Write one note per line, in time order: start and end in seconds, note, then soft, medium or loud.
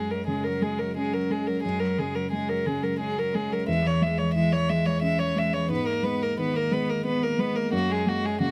0.00 1.60 F#2 soft
0.00 0.13 G#3 soft
0.00 0.48 G#3 soft
0.00 0.12 G#4 soft
0.10 0.26 F#3 soft
0.10 0.26 A#4 soft
0.27 0.82 C#3 soft
0.27 0.48 G#3 soft
0.27 0.45 G#4 soft
0.44 0.63 F#3 soft
0.44 0.64 A#4 soft
0.62 1.16 G#3 soft
0.62 0.81 G#3 soft
0.62 0.80 G#4 soft
0.78 0.96 F#3 soft
0.78 0.95 A#4 soft
0.96 1.15 G#3 soft
0.96 1.50 C#4 soft
0.96 1.15 G#4 soft
1.13 1.32 F#3 soft
1.13 1.32 A#4 soft
1.30 1.84 G#3 soft
1.30 1.50 G#3 soft
1.30 1.48 G#4 soft
1.47 1.64 F#3 soft
1.47 1.62 A#4 soft
1.63 3.64 F#2 soft
1.63 1.83 G#3 soft
1.63 1.81 G#4 soft
1.79 1.99 F#3 soft
1.79 2.00 A#4 soft
1.98 2.52 C#3 soft
1.98 2.16 G#3 soft
1.98 2.16 G#4 soft
2.15 2.31 F#3 soft
2.15 2.31 A#4 soft
2.31 2.51 G#3 soft
2.31 2.87 G#3 soft
2.31 2.50 G#4 soft
2.49 2.67 F#3 soft
2.49 2.67 A#4 soft
2.66 3.21 C#3 soft
2.66 2.83 G#3 soft
2.66 2.84 G#4 soft
2.82 2.98 F#3 soft
2.82 2.99 A#4 soft
2.99 3.18 G#3 soft
2.99 3.54 C#4 soft
2.99 3.20 G#4 soft
3.17 3.34 F#3 soft
3.17 3.36 A#4 soft
3.33 3.51 G#3 soft
3.33 3.68 G#3 soft
3.33 3.54 G#4 soft
3.50 3.67 F#3 soft
3.50 3.68 A#4 soft
3.68 5.66 E2 soft
3.68 3.86 G#3 soft
3.68 3.88 E5 soft
3.84 4.04 E3 soft
3.84 4.04 C#5 soft
4.01 4.55 G#3 soft
4.01 4.20 G#3 soft
4.01 4.20 E5 soft
4.18 4.35 E3 soft
4.18 4.33 C#5 soft
4.34 4.89 E3 soft
4.34 4.55 G#3 soft
4.34 4.54 E5 soft
4.52 4.72 E3 soft
4.52 4.71 C#5 soft
4.69 5.23 G#3 soft
4.69 4.88 G#3 soft
4.69 4.87 E5 soft
4.86 5.02 E3 soft
4.86 5.01 C#5 soft
5.02 5.20 G#3 soft
5.02 5.56 C#4 soft
5.02 5.20 E5 soft
5.19 5.38 E3 soft
5.19 5.40 C#5 soft
5.36 5.69 G#3 soft
5.36 5.55 G#3 soft
5.36 5.55 E5 soft
5.53 5.69 E3 soft
5.53 5.70 C#5 soft
5.70 7.69 G#2 medium
5.70 5.88 B3 medium
5.70 5.88 B4 medium
5.86 6.07 A#3 soft
5.86 6.05 A#4 soft
6.03 6.57 G#3 soft
6.03 6.24 B3 soft
6.03 6.24 B4 soft
6.22 6.38 A#3 soft
6.22 6.38 A#4 soft
6.38 6.91 D#3 soft
6.38 6.55 B3 soft
6.38 6.57 B4 soft
6.54 6.73 A#3 soft
6.54 6.74 A#4 medium
6.71 7.25 G#3 soft
6.71 6.92 B3 medium
6.71 6.91 B4 medium
6.89 7.05 A#3 soft
6.89 7.05 A#4 soft
7.04 7.59 B3 soft
7.04 7.26 B3 soft
7.04 7.24 B4 soft
7.23 7.40 A#3 soft
7.23 7.41 A#4 soft
7.39 7.73 G#3 soft
7.39 7.57 B3 medium
7.39 7.57 B4 soft
7.56 7.72 A#3 medium
7.56 7.73 A#4 soft
7.72 8.51 F#2 medium
7.72 7.90 A#3 medium
7.72 7.93 F#4 medium
7.89 8.07 G#3 medium
7.89 8.10 G#4 medium
8.06 8.51 G#3 medium
8.06 8.25 A#3 medium
8.06 8.27 F#4 medium
8.23 8.40 G#3 medium
8.23 8.41 G#4 medium
8.40 8.51 C#3 medium
8.40 8.51 A#3 medium
8.40 8.51 F#4 medium